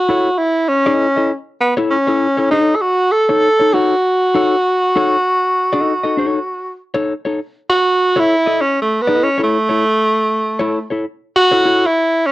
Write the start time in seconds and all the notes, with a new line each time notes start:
Already playing: F#4
0.09 E4 A4 C#5
0.38 E4
0.69 C#4
0.86 E4 A4 D#5
1.16 E4 A4 D#5
1.61 B3
1.77 E4 A4 C#5
1.90 C#4
2.07 E4 A4 C#5
2.37 E4 A4 C#5
2.51 D#4 A4 C#5
2.75 A4
2.81 F#4
3.12 A4
3.29 D#4 A4 C#5
3.59 D#4 A4 C#5
3.73 D#4 F#4 A4 C#5
4.35 D#4 A4 C#5
4.96 D#4 A4 C#5
5.73 D#4 A4 D#5
6.04 D#4 A4 D#5
6.17 D#4 A4 C#5
6.94 D#4 A4 C#5
7.25 D#4 A4 C#5
7.70 F#4
8.16 E4 A4 C#5
8.46 E4 A4 D#5
8.61 C#4
8.82 A3
9.02 B3
9.07 E4 A4 D#5
9.23 C#4
9.38 E4 A4 C#5
9.43 A3
9.69 E4 A4 C#5
10.59 E4 A4 C#5
10.90 E4 A4 C#5
11.36 F#4
11.51 E4 A4 C#5
11.65 E4 A4 C#5
11.86 E4
12.26 C#4